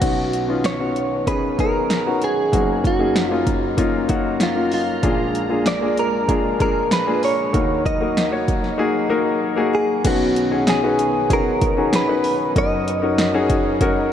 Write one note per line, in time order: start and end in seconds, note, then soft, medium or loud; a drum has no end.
0.00 2.49 B1 medium
0.00 2.48 B2 medium
0.00 2.51 D#3 medium
0.00 0.38 B3 medium
0.00 2.51 B3 medium
0.00 0.38 C#4 medium
0.00 2.50 C#4 medium
0.00 0.38 D#4 medium
0.00 0.68 F#4 medium
0.00 0.39 F#4 medium
0.00 kick medium
0.00 closed hi-hat medium
0.00 crash medium
0.33 closed hi-hat medium
0.48 0.73 B3 medium
0.48 0.73 C#4 medium
0.48 0.73 D#4 medium
0.48 0.74 F4 medium
0.64 1.27 C#5 medium
0.64 snare medium
0.64 closed hi-hat medium
0.79 1.17 B3 medium
0.79 1.17 C#4 medium
0.79 1.17 D#4 medium
0.79 1.17 F#4 medium
0.96 closed hi-hat medium
1.27 1.52 B3 medium
1.27 1.52 C#4 medium
1.27 1.52 D#4 medium
1.27 1.52 G#4 medium
1.27 1.57 B4 medium
1.27 kick medium
1.27 closed hi-hat medium
1.58 1.95 B3 medium
1.58 1.95 C#4 medium
1.58 1.95 D#4 medium
1.58 1.96 G#4 medium
1.58 2.24 A#4 medium
1.58 kick medium
1.58 closed hi-hat medium
1.90 snare loud
1.90 closed hi-hat medium
2.06 2.43 B3 medium
2.06 2.43 C#4 medium
2.06 2.43 D#4 medium
2.06 2.43 F#4 medium
2.22 2.86 G#4 medium
2.22 closed hi-hat medium
2.52 5.00 F#1 medium
2.52 5.00 F#2 medium
2.52 5.01 F#3 medium
2.52 2.89 A#3 medium
2.52 2.89 C#4 medium
2.52 5.01 D#4 medium
2.52 2.90 D#4 medium
2.52 2.90 F#4 medium
2.52 10.01 A#5 medium
2.52 kick medium
2.52 closed hi-hat medium
2.84 3.28 F#4 medium
2.84 kick medium
2.84 closed hi-hat medium
2.99 3.24 A#3 medium
2.99 3.24 C#4 medium
2.99 3.24 D#4 medium
2.99 3.25 G#4 medium
3.16 snare loud
3.16 closed hi-hat medium
3.28 3.68 A#3 medium
3.28 3.68 C#4 medium
3.28 3.68 D#4 medium
3.28 3.44 F4 medium
3.32 3.68 F4 medium
3.47 kick medium
3.47 closed hi-hat medium
3.77 4.02 A#3 medium
3.77 4.02 C#4 medium
3.77 4.03 D#4 medium
3.77 4.03 F4 medium
3.77 kick medium
3.77 closed hi-hat medium
4.08 4.46 A#3 medium
4.08 4.46 C#4 medium
4.08 4.46 D#4 medium
4.08 4.46 F#4 medium
4.08 kick medium
4.08 closed hi-hat medium
4.40 4.73 F4 medium
4.40 snare loud
4.40 closed hi-hat medium
4.55 4.93 A#3 medium
4.55 4.93 C#4 medium
4.55 4.93 D#4 medium
4.55 4.93 F4 medium
4.72 5.63 F4 medium
4.72 open hi-hat medium
5.03 7.50 A#1 medium
5.03 7.50 A#2 medium
5.03 7.52 G#3 medium
5.03 5.40 A#3 medium
5.03 5.40 D4 medium
5.03 7.52 D4 medium
5.03 5.40 F4 medium
5.03 5.40 G#4 medium
5.03 kick medium
5.03 closed hi-hat medium
5.35 closed hi-hat medium
5.50 5.74 A#3 medium
5.50 5.75 D4 medium
5.50 5.75 F4 medium
5.50 5.75 G#4 medium
5.66 5.99 D5 medium
5.66 snare loud
5.66 closed hi-hat medium
5.81 6.18 A#3 medium
5.81 6.18 D4 medium
5.81 6.18 F4 medium
5.81 6.19 G#4 medium
5.97 6.60 A#4 medium
5.97 closed hi-hat medium
6.28 6.53 A#3 medium
6.28 6.53 D4 medium
6.28 6.53 F4 medium
6.28 6.53 G#4 medium
6.28 kick medium
6.28 closed hi-hat medium
6.59 6.96 A#3 medium
6.59 6.97 D4 medium
6.59 6.97 F4 medium
6.59 6.97 G#4 medium
6.59 6.92 A#4 medium
6.59 kick medium
6.59 closed hi-hat medium
6.91 7.24 B4 medium
6.91 snare loud
6.91 closed hi-hat medium
7.06 7.43 A#3 medium
7.06 7.43 D4 medium
7.06 7.44 F4 medium
7.06 7.44 G#4 medium
7.23 7.86 C#5 loud
7.23 open hi-hat medium
7.53 10.00 D#2 medium
7.53 10.00 D#3 medium
7.53 10.02 F#3 medium
7.53 7.90 A#3 medium
7.53 7.90 D#4 medium
7.53 10.02 D#4 medium
7.53 7.90 F#4 medium
7.53 7.91 A#4 medium
7.53 kick loud
7.53 closed hi-hat medium
7.86 8.45 D#5 medium
7.86 kick medium
7.86 closed hi-hat medium
8.00 8.25 A#3 medium
8.00 8.25 D#4 medium
8.00 8.25 F#4 medium
8.00 8.26 A#4 medium
8.17 snare loud
8.17 closed hi-hat medium
8.31 8.68 A#3 medium
8.31 8.69 D#4 medium
8.31 8.69 F#4 medium
8.31 8.69 C#5 medium
8.48 kick medium
8.48 closed hi-hat medium
8.64 snare soft
8.78 9.03 A#3 medium
8.78 9.03 D#4 medium
8.78 9.04 F#4 medium
8.78 9.04 G#4 loud
9.09 9.47 A#3 medium
9.09 9.47 D#4 medium
9.09 9.47 F#4 medium
9.09 9.47 A#4 medium
9.56 9.94 A#3 medium
9.56 9.94 D#4 medium
9.56 9.94 F#4 medium
9.56 9.94 G#4 medium
9.75 10.06 G#4 medium
10.04 12.51 B1 medium
10.04 12.51 B2 medium
10.04 12.53 D#3 medium
10.04 12.53 B3 medium
10.04 10.41 C#4 medium
10.04 12.53 C#4 medium
10.04 10.41 D#4 medium
10.04 10.41 F#4 medium
10.04 10.64 F#4 medium
10.04 10.42 B4 medium
10.04 kick loud
10.04 closed hi-hat medium
10.04 crash medium
10.36 closed hi-hat medium
10.51 10.76 C#4 medium
10.51 10.76 D#4 medium
10.51 10.76 F#4 medium
10.51 10.76 G#4 medium
10.67 11.33 G#4 medium
10.67 snare loud
10.67 closed hi-hat medium
10.83 11.19 C#4 medium
10.83 11.20 D#4 medium
10.83 11.20 F#4 medium
10.83 11.20 B4 medium
10.99 closed hi-hat medium
11.29 11.66 C#4 medium
11.29 11.66 D#4 medium
11.29 11.67 F#4 medium
11.29 11.67 G#4 medium
11.29 kick medium
11.29 closed hi-hat medium
11.33 11.95 A#4 medium
11.62 kick medium
11.62 closed hi-hat medium
11.77 12.01 C#4 medium
11.77 12.02 D#4 medium
11.77 12.02 F#4 medium
11.77 12.02 G#4 medium
11.93 12.53 B4 medium
11.93 snare loud
11.93 closed hi-hat medium
12.08 12.45 C#4 medium
12.08 12.45 D#4 medium
12.08 12.45 F#4 medium
12.08 12.45 B4 medium
12.24 open hi-hat medium
12.56 14.13 F#1 medium
12.56 14.13 F#2 medium
12.56 14.13 F#3 medium
12.56 12.92 C#4 medium
12.56 14.13 D#4 medium
12.56 12.92 D#4 medium
12.56 12.92 F#4 medium
12.56 14.13 A#4 medium
12.56 12.93 A#4 medium
12.56 14.13 D#5 medium
12.56 kick loud
12.56 closed hi-hat medium
12.88 closed hi-hat medium
13.02 13.27 C#4 medium
13.02 13.27 D#4 medium
13.02 13.27 F#4 medium
13.02 13.27 A#4 medium
13.18 snare loud
13.18 closed hi-hat medium
13.34 13.70 C#4 medium
13.34 13.71 D#4 medium
13.34 13.71 F#4 medium
13.34 13.71 G#4 medium
13.50 kick medium
13.50 closed hi-hat medium
13.81 14.13 C#4 medium
13.81 14.13 D#4 medium
13.81 14.13 F#4 medium
13.81 14.13 A#4 loud
13.81 kick medium
13.81 closed hi-hat medium